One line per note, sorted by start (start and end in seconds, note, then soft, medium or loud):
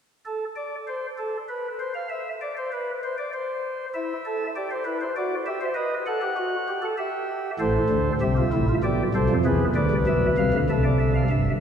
0.26 0.45 A4 medium
0.56 0.75 D5 medium
0.87 1.06 C5 medium
1.18 1.37 A4 medium
1.49 1.68 B4 medium
1.79 1.92 C5 medium
1.94 2.08 F5 medium
2.10 2.29 E5 medium
2.42 2.54 D5 medium
2.57 2.70 C5 medium
2.72 2.91 B4 medium
3.03 3.16 C5 medium
3.18 3.31 D5 medium
3.33 3.86 C5 medium
3.95 4.13 E4 medium
3.95 4.47 E5 medium
4.25 4.44 A4 medium
4.56 4.74 G4 medium
4.56 4.68 D5 medium
4.71 4.83 C5 medium
4.85 5.04 E4 medium
4.85 4.98 B4 medium
5.01 5.13 C5 medium
5.16 5.35 F#4 medium
5.16 5.35 D5 medium
5.46 5.59 G4 medium
5.46 5.65 E5 medium
5.61 5.74 C5 medium
5.75 5.94 B4 medium
5.75 5.94 D#5 medium
6.06 6.20 A4 medium
6.06 6.85 F#5 medium
6.22 6.35 G4 medium
6.37 6.56 F#4 medium
6.68 6.81 G4 medium
6.82 6.95 A4 medium
6.98 7.51 G4 medium
6.98 7.51 E5 medium
7.59 7.78 A1 medium
7.59 7.78 A2 medium
7.59 8.12 A4 medium
7.59 8.12 C5 medium
7.89 8.09 D2 medium
7.89 8.09 D3 medium
8.21 8.40 C2 medium
8.21 8.40 C3 medium
8.21 8.34 G4 medium
8.21 8.74 E5 medium
8.37 8.50 F4 medium
8.53 8.72 A1 medium
8.53 8.72 A2 medium
8.53 8.66 E4 medium
8.69 8.81 F4 medium
8.83 9.03 B1 medium
8.83 9.03 B2 medium
8.83 9.02 G4 medium
8.83 9.03 D5 medium
9.14 9.28 C2 medium
9.14 9.27 C3 medium
9.14 9.33 A4 medium
9.14 9.34 C5 medium
9.29 9.43 F2 medium
9.29 9.43 F3 medium
9.45 9.64 E2 medium
9.45 9.64 E3 medium
9.45 9.64 G#4 medium
9.45 9.64 B4 medium
9.75 9.89 D2 medium
9.75 9.89 D3 medium
9.75 10.55 B4 medium
9.75 9.95 D5 medium
9.91 10.04 C2 medium
9.91 10.05 C3 medium
10.07 10.26 B1 medium
10.07 10.26 B2 medium
10.07 10.26 E5 medium
10.37 10.51 C2 medium
10.37 10.51 C3 medium
10.37 10.57 F5 medium
10.53 10.67 D2 medium
10.53 10.67 D3 medium
10.70 11.23 C2 medium
10.70 11.23 C3 medium
10.70 11.23 A4 medium
10.70 10.83 E5 medium
10.84 10.98 D5 medium
11.00 11.13 E5 medium
11.15 11.28 F5 medium
11.30 11.50 G1 medium
11.30 11.50 G2 medium
11.30 11.50 E5 medium